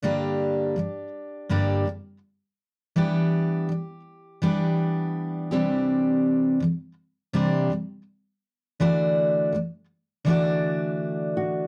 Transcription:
X:1
M:4/4
L:1/8
Q:"Swing 16ths" 1/4=82
K:G
V:1 name="Nylon-string guitar"
z8 | z8 | z8 | z6 z F |]
V:2 name="Steel-string acoustic guitar" clef=bass
[G,,D,G,_B,DG]2 [G,,D,G,] z [G,,D,G,B,DG] G,, z2 | [E,G,B,DG]2 [E,G,] z [E,G,B,DG]3 [C,E,G,CDG]- | [C,E,G,CDG]2 [C,E,G,] z [C,E,G,CDG] [C,E,G,] z2 | [D,E,A,DFd]2 [D,E,A,] z [D,E,A,DFd]4 |]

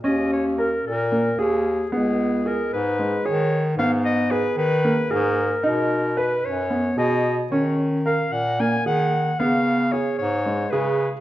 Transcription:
X:1
M:7/8
L:1/16
Q:1/4=112
K:Ebm
V:1 name="Clarinet"
e2 d2 B2 B4 A4 | A4 B2 c4 d3 z | f2 e2 c2 c4 B4 | B4 =B2 d4 ^d3 z |
d2 z2 f2 g2 a2 g4 | f4 d2 d4 c3 z |]
V:2 name="Grand piano"
D4 B4 B,2 A4 | C4 A4 A,2 A4 | C4 A4 B,2 A4 | ^D4 =B4 =B,2 ^G4 |
D4 B4 B,2 A4 | C4 A4 A,2 A4 |]
V:3 name="Bass clarinet" clef=bass
E,,6 B,,4 E,,4 | D,,6 A,,4 E,4 | A,,6 E,4 A,,4 | =B,,6 ^F,,4 B,,4 |
E,6 B,,4 E,4 | D,6 A,,4 D,4 |]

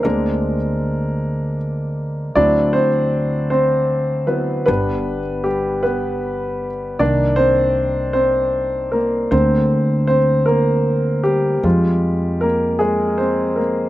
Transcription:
X:1
M:6/8
L:1/8
Q:3/8=52
K:Bbmix
V:1 name="Grand piano"
[B,B]4 z2 | [Dd] [Cc]2 [Cc]2 [=B,=B] | =B2 [G,G] [=B,B]2 z | [Dd] [Cc]2 [Cc]2 [B,B] |
c2 [Cc] [B,B]2 [G,G]- | [G,G]2 [B,B] [A,A] [Cc] [B,B] |]
V:2 name="Grand piano"
[A,CD] z4 z | [^F,C=E] z4 [F,CE] | [G,=B,D] z4 z | [E,B,]6 |
[D,B,C]3 z3 | [G,A,F]3 z3 |]
V:3 name="Upright bass" clef=bass
D,,6 | D,,6 | G,,,6 | C,,6 |
D,,6 | F,,6 |]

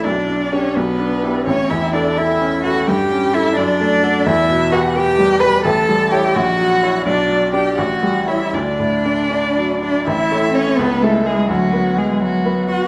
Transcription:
X:1
M:6/8
L:1/8
Q:3/8=85
K:D
V:1 name="Violin"
d2 c B3 | c e d e2 f | g2 e d3 | e2 f g2 b |
a2 g f3 | d2 g f2 e | d4- d d | [K:A] e2 c B A G |
F2 G F2 f |]
V:2 name="Cello"
D2 C B,3 | C E D E2 F | G2 E D3 | E2 F G2 B |
A2 G F3 | D2 G F2 E | D4- D D | [K:A] E2 C B, A, G, |
F,2 G, F,2 F |]
V:3 name="Grand piano"
B,,, D [DG] B,,, D [EG] | A,,, E,, [EA] [EA] C [EA] | G,, C [EA] F,, A, [FA] | E,, B,, [GB] [GB] G, [GB] |
A,,, G, [Ec] ^A,,, F, [Ec] | B,,, F, [Dd] A,,, G, [Ec] | D,, A,, [Dd] [Dd] F, [Dd] | [K:A] A,,, [A,Ec]2 C,, [G,Ee]2 |
D,, [B,FB]3 [B,FB]2 |]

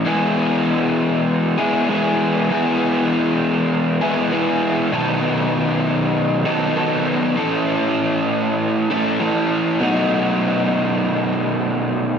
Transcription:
X:1
M:4/4
L:1/8
Q:1/4=98
K:E
V:1 name="Overdriven electric guitar"
[E,G,B,EG]4- [E,G,B,EG] [E,G,B,EG] [E,G,B,EG]2 | [E,G,B,EG]4- [E,G,B,EG] [E,G,B,EG] [E,G,B,EG]2 | [B,,D,F,B,DA]4- [B,,D,F,B,DA] [B,,D,F,B,DA] [B,,D,F,B,DA]2 | [A,,E,A,CEA]4- [A,,E,A,CEA] [A,,E,A,CEA] [A,,E,A,CEA]2 |
[B,,F,A,DF]8 |]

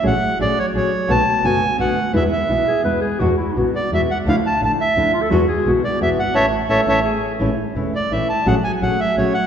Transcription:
X:1
M:3/4
L:1/16
Q:1/4=171
K:A
V:1 name="Bandoneon"
f4 d2 c2 c4 | a4 g4 f4 | e2 e6 z4 | z6 d2 e2 f2 |
=f2 a2 a2 e4 z2 | z6 d2 e2 f2 | [cea]2 z2 [cea]2 [cea]2 z4 | z6 d2 e2 a2 |
f2 g2 f2 e2 c2 f2 |]
V:2 name="Clarinet"
z12 | z12 | z6 G2 B2 G2 | F2 E3 z6 z |
z8 z2 =F A | F2 G3 z6 z | z4 A4 G4 | z12 |
z12 |]
V:3 name="Nylon-string guitar"
[F,A,CG] z3 [F,A,CG]2 z2 [F,A,CG]2 z2 | [B,,D,A,B,F] z3 [B,,D,A,B,F]2 z2 [B,,D,A,B,F]2 z2 | [B,,E,G,B,E] z3 [B,,E,G,B,E]2 z2 [B,,E,G,B,E]2 z2 | [B,,E,G,B,F] z3 [B,,E,G,B,F]2 z2 [B,,E,G,B,F]2 z2 |
[D,=F,A,DE] z3 [D,F,A,DE]2 z2 [D,F,A,DE]2 z2 | [B,,E,G,B,F] z3 [B,,E,G,B,F]2 z2 [B,,E,G,B,F]2 z2 | [E,A,C]2 z2 [E,A,C]2 [E,A,C]2 z4 | [E,A,CE] z3 [E,A,CE]2 z2 [E,A,CE]2 z2 |
[F,A,CG] z3 [F,A,CG]2 z2 [F,A,CG]2 z2 |]
V:4 name="Double bass" clef=bass
A,,,2 z2 A,,,2 z2 A,,,2 z2 | B,,,2 z2 F,,,2 z2 B,,,2 z2 | E,,2 z2 B,,,2 z2 E,,2 z2 | E,,2 z2 B,,,2 z2 E,,2 z2 |
D,,2 z2 A,,,2 z2 D,,2 z2 | E,,2 z2 B,,,2 z2 E,,2 =G,,,2 | A,,,2 z2 A,,,2 A,,,2 z4 | A,,,2 z2 E,,,2 z2 A,,,2 z2 |
A,,,2 z2 A,,,2 z2 A,,,2 z2 |]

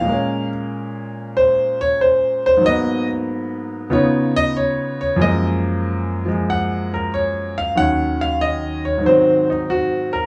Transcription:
X:1
M:4/4
L:1/8
Q:"Swing" 1/4=94
K:Bbdor
V:1 name="Grand piano"
f z3 c d c c | e z3 d e d d | e z3 _g B d f | _g f e d c E _G B |]
V:2 name="Grand piano" clef=bass
[B,,A,B,D]8 | [A,,_G,B,_C]4 [D,CEF]4 | [_G,,F,A,B,]3 [F,A,]4- [F,A,] | [E,,E,_G,D]4 [A,,E,G,C]4 |]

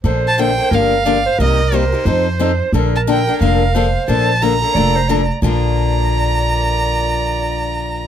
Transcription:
X:1
M:4/4
L:1/16
Q:"Swing" 1/4=178
K:Bb
V:1 name="Violin"
z2 a2 g4 f8 | e4 c8- c2 z2 | z2 a2 g4 f8 | a4 b8- b2 z2 |
b16- | b16 |]
V:2 name="Clarinet"
c8 B4 d2 c2 | B8 c8 | B12 c4- | c4- c z2 z/2 _d/2 =d2 c2 d4 |
d16- | d16 |]
V:3 name="Steel-string acoustic guitar"
[D,F,B,DA]2 z2 [D,F,B,DA] z [B,DA]2 [D,F,B,DG]2 z2 [D,F,B,DG] z3 | [C,G,B,EG]2 z2 [C,G,B,EG] z [B,EG]2 [F,CEA]2 z2 [F,CEA] z3 | [D,F,B,DA]2 z2 [D,F,B,DA] z [B,DA]2 [D,F,B,DA]2 z2 [D,F,B,DA] z3 | [D,F,B,DA]2 z2 [D,F,B,DA] z [B,DA]2 [D,F,B,DA]2 z2 [D,F,B,DA] z3 |
[B,,D,F,B,D]16- | [B,,D,F,B,D]16 |]
V:4 name="Upright bass" clef=bass
B,,,8 G,,,8 | C,,8 F,,8 | B,,,8 F,,,8 | B,,,8 F,,,8 |
B,,,16- | B,,,16 |]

